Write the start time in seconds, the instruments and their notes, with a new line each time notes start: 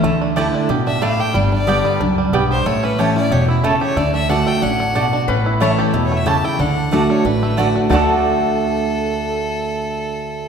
0.03 upright bass D2, steel-string acoustic guitar D3, five-string banjo A3
0.21 five-string banjo D4
0.36 steel-string acoustic guitar D3 A3 D4 E4, mandolin A3 E4 D5 A5, five-string banjo G4
0.54 five-string banjo D4
0.69 upright bass A1, steel-string acoustic guitar B2, five-string banjo G4
0.87 five-string banjo D4, fiddle E5
1.01 steel-string acoustic guitar A2, mandolin A3 E4 D5 A5, five-string banjo A3, fiddle F5
1.20 five-string banjo G4, fiddle G5
1.34 upright bass G1, steel-string acoustic guitar G2, five-string banjo G3, fiddle D5
1.52 five-string banjo D4, fiddle D5
1.67 steel-string acoustic guitar D3 G3 B3 G4, mandolin B3 G4 D5 G5, five-string banjo G4
1.85 five-string banjo G3
2.00 upright bass C#2, steel-string acoustic guitar F#2, five-string banjo D4
2.18 five-string banjo G3
2.33 upright bass B1, steel-string acoustic guitar G2, five-string banjo B3, mandolin B3 G4 D5 G5
2.51 five-string banjo G4, fiddle C5
2.65 upright bass A1, steel-string acoustic guitar A2, five-string banjo A3, fiddle C#5
2.83 five-string banjo C#4, fiddle B4
2.98 steel-string acoustic guitar E3 A3 C#4 E4, mandolin A3 E4 C#5 A5, five-string banjo G4, fiddle C#5
3.16 five-string banjo C#4, steel-string acoustic guitar C#4 E4, fiddle D5
3.31 upright bass E1, steel-string acoustic guitar B2, five-string banjo G4, fiddle C#5
3.49 five-string banjo E4, fiddle E4
3.64 steel-string acoustic guitar C#3, mandolin A3 E4 C#5 A5, five-string banjo A3, fiddle A4
3.81 five-string banjo G4, fiddle C#5
3.96 upright bass D2, steel-string acoustic guitar D3, five-string banjo A3, fiddle D5
4.14 five-string banjo D4, fiddle E5
4.29 steel-string acoustic guitar D3 A3 D4 F#4, mandolin A3 F#4 D5 A5, five-string banjo D4, fiddle F#5
4.47 five-string banjo A3, fiddle G5
4.62 upright bass A1, steel-string acoustic guitar C#4, five-string banjo D4, fiddle F#5
4.80 five-string banjo D4
4.95 steel-string acoustic guitar B2, mandolin A3 F#4 D5 A5, five-string banjo D4
5.13 five-string banjo D4
5.28 upright bass A1, steel-string acoustic guitar A2, five-string banjo C#4, resonator guitar played with a steel bar B4
5.46 five-string banjo E4
5.60 steel-string acoustic guitar E3 A3 C#4 E4, mandolin A3 E4 C#5 A5, five-string banjo A3, resonator guitar played with a steel bar C#5
5.79 five-string banjo G4, resonator guitar played with a steel bar A4
5.93 upright bass E2, steel-string acoustic guitar B2, five-string banjo E4
6.05 fiddle C#5
6.12 five-string banjo A3
6.17 fiddle E5
6.26 steel-string acoustic guitar C#3, mandolin A3 E4 C#5 A5, five-string banjo G4, fiddle A5
6.45 five-string banjo E4, fiddle G5
6.59 upright bass D2, steel-string acoustic guitar D3, five-string banjo D4, fiddle F#5
6.91 steel-string acoustic guitar D3 A3 D4 F#4, mandolin A3 F#4 D5 A5, five-string banjo A3
7.10 five-string banjo D4, fiddle C#5
7.24 upright bass A1, steel-string acoustic guitar A2, five-string banjo D4, fiddle B4
7.43 five-string banjo A3
7.57 steel-string acoustic guitar D3 A3 D4 F#4, mandolin A3 F#4 D5 A5, five-string banjo D4
7.76 five-string banjo D4
7.89 upright bass D2, steel-string acoustic guitar D3 A3 D4 F#4, mandolin A3 F#4 D5 A5, five-string banjo A3 D4, resonator guitar played with a steel bar A4, fiddle A4
7.95 five-string banjo F#4 A4